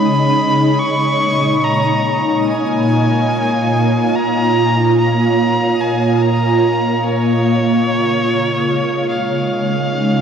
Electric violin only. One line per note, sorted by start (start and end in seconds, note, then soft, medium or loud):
0.00 0.80 B5 loud
0.79 1.65 C#6 loud
1.64 2.49 A#5 medium
2.48 4.17 G#5 medium
4.15 4.97 A#5 loud
4.98 5.82 A#5 medium
5.81 6.23 G#5 medium
6.22 7.06 A#5 medium
7.04 9.08 C#5 loud
9.08 10.21 F5 medium